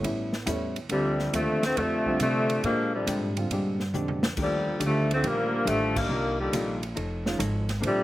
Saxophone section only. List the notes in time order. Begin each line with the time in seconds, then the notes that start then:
0.91 C3 D3 F3 G3
1.35 C3 D3 F3 A3
1.65 D3 F3 A3 C4
1.78 C3 D3 F3 A3
2.22 C3 D3 F3 A3
2.65 D3 F3 G#3 A#3
2.94 C3 D3 F3 G3
4.42 A#2 D3 F3 G3
4.86 D3 F3 G3 A3
5.14 D3 F3 A3 C4
5.27 D3 F3 G3 A#3
5.69 D3 F3 G3 A3
5.98 D3 D#3 G3 A#3
6.40 A#2 D3 D#3 G3
7.86 C3 D3 F3 G3